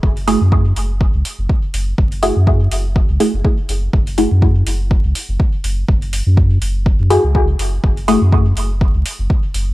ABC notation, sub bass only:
X:1
M:4/4
L:1/16
Q:"Swing 16ths" 1/4=123
K:F#m
V:1 name="Sub bass" clef=bass
F,,,3 F,,3 F,,,3 C,, z F,,, z2 F,,,2 | F,,,3 F,,3 F,,,3 C,, z F,,, z2 F,,,2 | F,,,3 F,,3 F,,,3 C,, z F,,, z2 F,,,2 | F,,,3 F,,3 F,,,3 F,,2 C,,3 F,,,2 |
F,,,3 F,,3 F,,,3 C,, z F,,, z2 F,,,2 |]